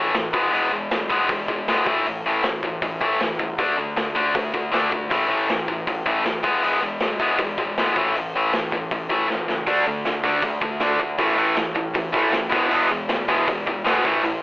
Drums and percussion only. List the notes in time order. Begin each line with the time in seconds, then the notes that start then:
0.14 snare, open hi-hat
0.34 kick
0.53 open hi-hat
0.91 snare, open hi-hat
1.10 kick
1.29 kick, open hi-hat
1.48 kick
1.68 snare, open hi-hat
1.86 kick
2.06 open hi-hat
2.43 snare, open hi-hat
2.63 kick
2.82 kick, open hi-hat
3.01 kick
3.20 snare, open hi-hat
3.40 kick
3.59 kick, open hi-hat
3.97 snare, open hi-hat
4.16 kick
4.35 kick, open hi-hat
4.54 kick
4.73 snare, open hi-hat
4.92 kick
5.11 kick, open hi-hat
5.49 snare, open hi-hat
5.68 kick
5.87 kick, open hi-hat
6.06 kick
6.25 snare, open hi-hat
6.44 kick
6.63 open hi-hat
7.00 snare, open hi-hat
7.20 kick
7.38 kick, open hi-hat
7.58 kick
7.77 snare, open hi-hat
7.96 kick
8.15 open hi-hat
8.53 snare, open hi-hat
8.72 kick
8.91 kick, open hi-hat
9.10 kick
9.30 snare
9.49 snare
9.67 kick, open hi-hat
10.05 snare, open hi-hat
10.24 kick
10.42 kick, open hi-hat
10.62 kick
10.80 snare, open hi-hat
11.00 kick
11.18 kick, open hi-hat
11.56 snare, open hi-hat
11.76 kick
11.95 kick, open hi-hat
12.14 kick
12.32 snare, open hi-hat
12.52 kick
12.71 open hi-hat
13.09 snare, open hi-hat
13.29 kick
13.48 kick, open hi-hat
13.67 kick
13.86 snare, open hi-hat
14.05 kick
14.24 open hi-hat